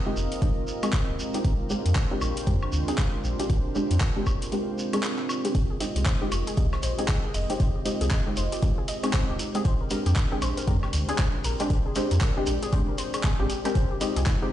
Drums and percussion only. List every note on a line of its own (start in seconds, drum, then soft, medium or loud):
0.17 shekere medium
0.32 closed hi-hat medium
0.32 shekere soft
0.42 kick loud
0.42 closed hi-hat soft
0.42 shekere soft
0.67 shekere medium
0.83 closed hi-hat medium
0.83 high woodblock medium
0.83 shekere soft
0.93 kick loud
0.93 clap loud
0.93 closed hi-hat soft
0.93 shekere soft
1.19 shekere medium
1.34 closed hi-hat medium
1.34 shekere medium
1.44 kick loud
1.44 closed hi-hat soft
1.44 shekere soft
1.70 shekere medium
1.86 closed hi-hat medium
1.86 shekere soft
1.95 kick loud
1.95 clap loud
1.95 closed hi-hat soft
1.95 shekere soft
2.21 high woodblock medium
2.21 shekere medium
2.37 closed hi-hat medium
2.37 shekere soft
2.47 kick loud
2.47 closed hi-hat medium
2.63 high woodblock medium
2.72 shekere medium
2.88 closed hi-hat medium
2.88 shekere soft
2.98 kick loud
2.98 clap loud
2.98 closed hi-hat soft
2.98 shekere soft
3.24 shekere medium
3.40 closed hi-hat medium
3.40 shekere soft
3.50 kick loud
3.50 closed hi-hat medium
3.50 shekere soft
3.75 shekere medium
3.91 closed hi-hat medium
3.91 shekere soft
4.00 kick loud
4.00 clap loud
4.00 closed hi-hat soft
4.00 shekere soft
4.26 kick medium
4.26 high woodblock medium
4.26 shekere medium
4.42 closed hi-hat medium
4.42 shekere soft
4.52 closed hi-hat medium
4.52 shekere soft
4.78 shekere medium
4.93 closed hi-hat medium
4.93 high woodblock medium
4.93 shekere soft
5.03 clap loud
5.03 closed hi-hat soft
5.03 shekere soft
5.19 clap soft
5.29 high woodblock medium
5.29 shekere medium
5.45 closed hi-hat medium
5.45 shekere soft
5.55 kick loud
5.55 closed hi-hat medium
5.55 shekere soft
5.80 snare soft
5.80 closed hi-hat medium
5.80 open hi-hat loud
5.80 shekere medium
5.96 closed hi-hat medium
5.96 shekere medium
6.05 kick loud
6.05 snare loud
6.05 clap loud
6.05 closed hi-hat medium
6.05 closed hi-hat soft
6.05 shekere soft
6.21 snare soft
6.32 closed hi-hat medium
6.32 open hi-hat medium
6.32 high woodblock medium
6.32 shekere medium
6.47 closed hi-hat medium
6.47 shekere medium
6.57 kick loud
6.57 closed hi-hat medium
6.57 shekere soft
6.72 snare medium
6.72 high woodblock medium
6.82 closed hi-hat medium
6.82 open hi-hat loud
6.82 shekere medium
6.98 closed hi-hat medium
6.98 shekere medium
7.08 kick loud
7.08 snare loud
7.08 clap loud
7.08 closed hi-hat medium
7.08 closed hi-hat soft
7.08 shekere soft
7.34 open hi-hat medium
7.34 shekere medium
7.50 closed hi-hat medium
7.50 shekere medium
7.60 kick loud
7.60 closed hi-hat soft
7.60 closed hi-hat medium
7.60 shekere soft
7.86 closed hi-hat medium
7.86 open hi-hat loud
7.86 shekere medium
8.01 closed hi-hat medium
8.01 shekere medium
8.10 kick loud
8.10 snare loud
8.10 clap loud
8.10 closed hi-hat soft
8.10 closed hi-hat medium
8.10 shekere soft
8.36 closed hi-hat medium
8.36 open hi-hat medium
8.36 shekere medium
8.52 snare soft
8.52 closed hi-hat medium
8.52 shekere soft
8.62 kick loud
8.62 closed hi-hat medium
8.62 shekere soft
8.88 closed hi-hat medium
8.88 open hi-hat loud
8.88 shekere medium
9.03 closed hi-hat medium
9.03 high woodblock medium
9.03 shekere soft
9.13 kick loud
9.13 snare loud
9.13 clap loud
9.13 closed hi-hat medium
9.13 closed hi-hat soft
9.13 shekere soft
9.39 closed hi-hat medium
9.39 open hi-hat medium
9.39 shekere medium
9.55 closed hi-hat medium
9.55 shekere medium
9.65 kick loud
9.65 closed hi-hat medium
9.65 closed hi-hat soft
9.65 shekere soft
9.90 snare soft
9.90 closed hi-hat medium
9.90 open hi-hat loud
9.90 shekere medium
10.06 closed hi-hat medium
10.06 shekere soft
10.16 kick loud
10.16 snare loud
10.16 clap loud
10.16 closed hi-hat medium
10.16 closed hi-hat soft
10.16 shekere soft
10.31 snare soft
10.42 closed hi-hat medium
10.42 open hi-hat medium
10.42 high woodblock medium
10.42 shekere medium
10.57 closed hi-hat medium
10.57 shekere medium
10.68 kick loud
10.68 closed hi-hat soft
10.68 closed hi-hat medium
10.83 snare medium
10.83 high woodblock medium
10.93 closed hi-hat medium
10.93 open hi-hat loud
10.93 shekere medium
11.09 closed hi-hat medium
11.09 shekere medium
11.18 kick loud
11.18 snare loud
11.18 clap loud
11.18 closed hi-hat soft
11.18 closed hi-hat medium
11.18 shekere soft
11.44 open hi-hat medium
11.44 shekere medium
11.60 closed hi-hat medium
11.60 shekere medium
11.70 kick loud
11.70 closed hi-hat soft
11.70 closed hi-hat medium
11.70 shekere soft
11.95 closed hi-hat medium
11.95 open hi-hat loud
11.95 shekere medium
12.11 closed hi-hat medium
12.11 shekere medium
12.21 kick loud
12.21 snare loud
12.21 clap loud
12.21 closed hi-hat soft
12.21 closed hi-hat medium
12.21 shekere soft
12.46 closed hi-hat medium
12.46 open hi-hat medium
12.46 shekere medium
12.62 snare soft
12.62 closed hi-hat medium
12.62 shekere soft
12.73 kick loud
12.73 closed hi-hat soft
12.73 closed hi-hat medium
12.98 closed hi-hat medium
12.98 open hi-hat loud
12.98 shekere medium
13.13 closed hi-hat medium
13.13 high woodblock medium
13.13 shekere medium
13.24 kick loud
13.24 snare loud
13.24 clap loud
13.24 closed hi-hat soft
13.24 closed hi-hat medium
13.24 shekere soft
13.50 closed hi-hat medium
13.50 open hi-hat medium
13.50 shekere medium
13.65 closed hi-hat medium
13.65 shekere soft
13.75 kick loud
13.75 closed hi-hat soft
13.75 closed hi-hat medium
13.75 shekere soft
14.01 snare soft
14.01 closed hi-hat medium
14.01 open hi-hat loud
14.01 shekere medium
14.16 closed hi-hat medium
14.16 shekere soft
14.26 kick loud
14.26 snare loud
14.26 clap loud
14.26 closed hi-hat medium
14.26 closed hi-hat soft
14.26 shekere soft
14.42 snare soft